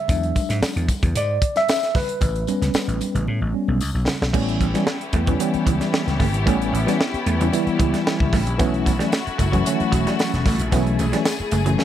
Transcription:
Already playing: E5
0.08 E2 F#3 G#3 D4, kick, closed hi-hat, tambourine, muted conga, low conga
0.23 closed hi-hat, muted conga
0.35 kick, closed hi-hat, tambourine, high conga
0.49 G#2, snare, closed hi-hat
0.62 muted slap bass stroke, snare, tambourine
0.76 E2, closed hi-hat
0.88 kick, closed hi-hat, tambourine, high conga
1.03 E2, kick, closed hi-hat, low conga
1.15 G#2 D5, closed hi-hat, tambourine
1.42 kick, closed hi-hat
1.56 E5, snare, closed hi-hat, high conga
1.68 snare, tambourine, muted conga
1.83 snare, closed hi-hat
1.95 B4, kick, snare, open hi-hat, tambourine, high conga, low conga
2.09 closed hi-hat
2.21 A1, kick, closed hi-hat, tambourine, low conga
2.36 closed hi-hat
2.47 G3 B3 C#4, closed hi-hat, tambourine, high conga
2.62 C#2, snare, closed hi-hat
2.74 muted slap bass stroke, snare, tambourine
2.88 A1, closed hi-hat, muted conga
3.01 closed hi-hat, tambourine, high conga
3.15 A1, closed hi-hat, low conga
3.27 A2, muted conga
3.41 A1
3.54 G3 B3 C#4
3.68 B1, high conga
3.81 C#2, tambourine
3.95 B1
4.07 snare, tambourine, high conga, low conga
4.22 B1, snare
4.33 A1 E3 G3 A3 B3 C#4 E4 G4, kick, crash
4.49 closed hi-hat
4.61 A1, muted clean electric guitar stroke, kick, closed hi-hat, high conga
4.74 E3 G3 B3 C#4, snare, closed hi-hat
4.87 muted clean electric guitar stroke, snare
5.01 closed hi-hat
5.13 E2 A3 B3 E4, kick, closed hi-hat, high conga
5.27 E3 G3 B3 C#4, kick, closed hi-hat, low conga
5.39 E3 G3 B3 C#4, muted clean electric guitar stroke, closed hi-hat, muted conga
5.54 muted slap bass stroke, closed hi-hat, muted conga
5.67 C#2 E3, kick, closed hi-hat
5.80 G3, snare, closed hi-hat, high conga
5.93 snare, muted conga
6.06 C#2, snare, closed hi-hat, muted conga
6.20 G1 A3, kick, snare, open hi-hat, high conga, low conga
6.34 G#1, closed hi-hat
6.46 A1 E3 G3 A3 B3 C#4, kick, closed hi-hat
6.61 closed hi-hat, muted conga
6.73 A1, muted clean electric guitar stroke, closed hi-hat, high conga
6.86 E3 G3 B3 C#4, snare, closed hi-hat
6.99 B3 C#4, muted clean electric guitar stroke, snare, muted conga
7.14 muted slap bass stroke, closed hi-hat, muted conga
7.26 E2 A3 B3 C#4, closed hi-hat, high conga
7.40 E3 G3 B3 C#4, closed hi-hat, low conga
7.52 E3 G3 B3 E4, muted clean electric guitar stroke, closed hi-hat, muted conga
7.67 muted slap bass stroke, closed hi-hat, muted conga
7.79 C#2 E3, kick, closed hi-hat
7.93 G3, snare, closed hi-hat, high conga
8.07 snare
8.20 C#2, kick, muted conga
8.33 A1 A3, kick, snare, open hi-hat, high conga, low conga
8.47 A#1, closed hi-hat
8.58 B1 E3 F#3 A3 B3 C#4 F#4, kick, closed hi-hat, tambourine
8.74 closed hi-hat
8.86 B1, muted clean electric guitar stroke, kick, closed hi-hat, tambourine, high conga
8.99 E3 F#3 G3 A3 C#4, snare, closed hi-hat
9.12 A3 B3, muted clean electric guitar stroke, snare, tambourine, muted conga
9.27 muted slap bass stroke, closed hi-hat, muted conga
9.38 F#1 A3 C#4, kick, closed hi-hat, tambourine, high conga
9.52 E3 F#3 A3 C#4, kick, closed hi-hat, low conga
9.65 D3 F#3 A3 C#4, muted clean electric guitar stroke, closed hi-hat, tambourine, muted conga
9.72 E3
9.80 muted slap bass stroke, closed hi-hat, muted conga
9.92 E1 F#3, kick, closed hi-hat, tambourine
10.07 G3, snare, closed hi-hat, high conga
10.19 snare, tambourine, muted conga
10.33 E1, snare, closed hi-hat
10.45 A1 A3, kick, snare, open hi-hat, tambourine, high conga, low conga
10.59 A#1, closed hi-hat
10.72 B1 E3 F#3 A3 B3 C#4 G#4, kick, closed hi-hat, tambourine, low conga
10.87 closed hi-hat
10.99 B1, muted clean electric guitar stroke, closed hi-hat, tambourine, high conga
11.12 E3 F#3 G3 A3 C#4, snare, closed hi-hat
11.25 A3, muted clean electric guitar stroke, snare, tambourine, muted conga
11.40 muted slap bass stroke, muted conga
11.51 F#1 A3 C#4, closed hi-hat, tambourine, high conga
11.66 E3 F#3 A3 C#4, closed hi-hat, low conga
11.78 D#3 F#3 A3 C#4, muted clean electric guitar stroke, snare, muted conga

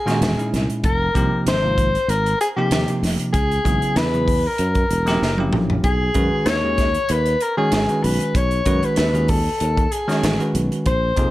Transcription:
Already playing: G#4
0.06 A#2 D#3 G#3 C#4 F#4, snare, closed hi-hat
0.21 E1, snare, closed hi-hat
0.38 A#2 G#3 C#4 D#4 E4, closed hi-hat
0.54 C2, snare, closed hi-hat
0.70 closed hi-hat
0.84 F1 A#4, kick, closed hi-hat
1.15 C2 C3 F3 A#3 D#4 G4, kick, closed hi-hat
1.47 G#1 C5, snare, closed hi-hat
1.63 C3 F3 A#3 D#4 F4
1.78 kick, closed hi-hat
1.95 D#4 G#4, closed hi-hat
2.08 G#1 A#4, closed hi-hat
2.26 closed hi-hat
2.41 G#4, closed hi-hat
2.57 C3 F3 A#3 D#4 G4
2.71 D#2, snare, closed hi-hat
2.88 C3 F3 A#3 D#4 G4, closed hi-hat
3.03 F1, snare, open hi-hat
3.19 closed hi-hat
3.33 C#2 G#4, kick, closed hi-hat
3.51 closed hi-hat
3.64 G#1 C#3 F#3 B3 E4 G#4, kick, closed hi-hat
3.82 closed hi-hat
3.96 E2 B4, snare, closed hi-hat
4.13 C#3 F#3 B3 E4 G#4, closed hi-hat
4.28 kick, open hi-hat
4.45 E4 A#4 B4
4.58 F#2, closed hi-hat
4.75 kick, closed hi-hat
4.91 E1, closed hi-hat
5.06 F#3 A#3 C#4 E4 G4, snare, closed hi-hat
5.22 F#1, snare
5.38 F#3 A#3 C#4 E4 G4, high tom
5.53 A#1, mid tom
5.70 floor tom
5.84 B1 G#4, kick, closed hi-hat
6.14 F#2 D#3 G#3 C#4 F#4 B4, kick, closed hi-hat
6.32 muted fretless electric bass stroke
6.46 D#2 C#5, snare, closed hi-hat
6.63 D#3 G#3 C#4 F#4 G#4
6.78 kick, snare, closed hi-hat
6.94 F#4 B4, closed hi-hat
7.09 D#2 B4, closed hi-hat
7.26 closed hi-hat
7.41 A#4, closed hi-hat
7.57 D#3 G#3 C#4 F#4 G#4 C#5
7.72 G#1, snare, closed hi-hat
7.88 D#3 G#3 C#4 F#4 B4, closed hi-hat
8.03 B1 B4, open hi-hat
8.20 closed hi-hat
8.35 B1 C#5, kick, closed hi-hat
8.51 closed hi-hat
8.65 F#2 D#3 G#3 C#4 F#4 B4, kick, closed hi-hat
8.83 B4, muted fretless electric bass stroke, closed hi-hat
8.96 D#2, snare, closed hi-hat
9.14 D#3 G#3 C#4 F#4 G#4, closed hi-hat
9.28 A4, kick, open hi-hat
9.45 F#4 B4
9.60 D#2, closed hi-hat
9.77 kick, closed hi-hat
9.92 G#4, closed hi-hat
10.08 D#3 G#3 C#4 F#4 C#5, snare, closed hi-hat
10.23 A1, snare, closed hi-hat
10.39 D#3 G#3 C#4 F#4 B4, closed hi-hat
10.55 B1, closed hi-hat
10.72 closed hi-hat
10.86 A#1 C5, kick, closed hi-hat
11.16 F2 C3 F3 A#3 D#4 G#4, kick, closed hi-hat

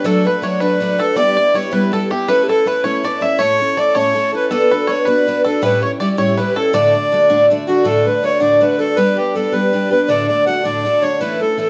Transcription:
0.04 F#3 A3 D4 F#4 A4
0.25 A3 D4 F#4 B4
0.42 F#3 A3 D4 F#4 C#5
0.60 F#3 A3 D4 F#4 B4
0.80 F#3 A3 D4 F#4
0.98 A3 D4 F#4 A4
1.16 G3 B3 E4 G4 D5
1.37 B3 E4 G4 D5
1.54 G3 B3 E4 G4 C#5
1.71 G3 B3 E4 G4 B4
1.92 G3 B3 E4 G4 A4
2.10 B3 E4 G4
2.28 A3 C#4 E4 B4
2.43 G4
2.48 C#4 E4 A4 B4
2.66 A3 C#4 E4 B4
2.84 A3 C#4 E4 B4 C#5
3.04 A3 C#4 E4 B4 D5
3.21 C#4 E4 B4 E5
3.38 A2 A3 C#4 E4 A4 C#5
3.59 C#4 E4 A4
3.77 A3 C#4 E4 A4 D5
3.95 A2 A3 C#4 E4 A4 C#5
4.15 A3 C#4 E4 A4
4.33 C#4 E4 A4 B4
4.51 B3 D4 F#4 A4 B4
4.70 D4 F#4 B4
4.87 B3 D4 F#4 B4 C#5
5.05 B3 D4 F#4 B4
5.27 B3 D4 F#4 B4
5.44 D4 F#4 A4 B4
5.62 A2 G3 C#4 E4 G4 B4 C#5
5.66 B4
5.82 C#4 E4 G4 C#5
6.00 G3 C#4 E4 G4 D5
6.17 A2 G3 C#4 E4 G4 C#5 D5
6.22 C#5
6.37 G3 C#4 E4 G4 B4
6.55 C#4 E4 G4 A4
6.73 D2 A2 D3 A3 D4 F#4 D5
6.94 D3 A3 D4 F#4
7.12 D3 A3 D4 F#4
7.29 D2 A2 D3 A3 D4 F#4
7.50 D3 A3 D4 F#4
7.67 D3 A3 D4 F#4
7.84 D2 A2 D3 A3 D4 F#4 A4
8.05 D3 A3 D4 F#4 B4
8.22 D3 A3 D4 F#4 C#5
8.40 D2 A2 D3 A3 D4 F#4 D5
8.61 D3 A3 D4 F#4 B4
8.79 D3 A3 D4 F#4 A4
8.96 G3 B3 D4 G4 B4
9.16 B3 D4 G4
9.35 G3 B3 D4 G4 A4
9.52 G3 B3 D4 G4 B4
9.73 G3 B3 D4 G4
9.91 B3 D4 G4 B4
10.08 D2 A2 D3 A3 D4 F#4 D5
10.28 D3 A3 D4 F#4 D5
10.46 D3 A3 D4 F#4 F#5
10.64 D2 A2 D3 A3 D4 F#4 D5
10.85 D3 A3 D4 F#4
11.02 D3 A3 D4 F#4 C#5
11.20 A2 E3 A3 C#4 E4 B4
11.39 A3 C#4 E4 A4
11.57 E3 A3 C#4 E4 A4

